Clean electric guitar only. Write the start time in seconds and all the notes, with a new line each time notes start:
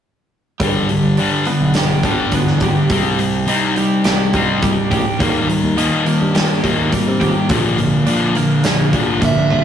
0.60 G3
1.18 D4
1.47 B3
1.77 G4
2.05 D4
2.34 B3
2.62 G4
2.90 C3
3.49 D#4
3.77 G3
4.05 G4
4.34 D#4
4.63 G3
4.91 G4
5.21 D#3
5.78 D#4
6.07 A#3
6.35 G4
6.63 D#4
6.92 A#3
7.20 G4
7.49 A#2
8.07 D4
8.36 A#3
8.64 F4
8.93 D4
9.21 A#3
9.51 F4